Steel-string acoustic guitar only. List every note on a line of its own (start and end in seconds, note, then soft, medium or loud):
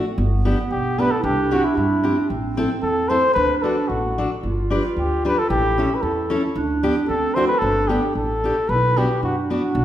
0.45 0.57 B3 medium
0.45 0.57 D4 medium
0.45 0.58 G4 medium
0.98 1.10 B3 medium
0.98 1.11 D4 medium
0.98 1.11 G4 medium
1.51 1.63 C4 medium
1.51 1.63 E4 medium
1.51 1.63 G4 medium
2.04 2.15 C4 medium
2.04 2.16 E4 medium
2.04 2.16 G4 medium
2.57 2.69 C4 medium
2.57 2.69 E4 medium
2.57 2.69 A4 medium
3.10 3.21 C4 medium
3.10 3.21 E4 medium
3.10 3.22 A4 medium
3.64 3.75 D4 medium
3.64 3.76 F#4 medium
3.64 3.76 A4 medium
4.18 4.29 D4 medium
4.18 4.29 F#4 medium
4.18 4.29 A4 medium
4.70 4.82 D4 medium
4.70 4.82 G4 medium
4.70 4.83 B4 medium
5.25 5.36 D4 medium
5.25 5.36 G4 medium
5.25 5.36 B4 medium
5.78 5.89 C#4 medium
5.78 5.89 E4 medium
5.78 5.90 A4 medium
6.30 6.41 C#4 medium
6.30 6.42 E4 medium
6.30 6.42 A4 medium
6.83 6.94 B3 medium
6.83 6.94 D4 medium
6.83 6.95 G4 medium
7.36 7.47 A3 medium
7.36 7.48 D4 medium
7.36 7.48 F#4 medium
7.89 8.01 B3 medium
7.89 8.01 D4 medium
7.89 8.01 G4 medium
8.44 8.55 B3 medium
8.44 8.55 D4 medium
8.44 8.55 G4 medium
8.96 9.08 B3 medium
8.96 9.08 D4 medium
8.96 9.08 F#4 medium
9.50 9.61 B3 medium
9.50 9.61 D4 medium
9.50 9.62 F#4 medium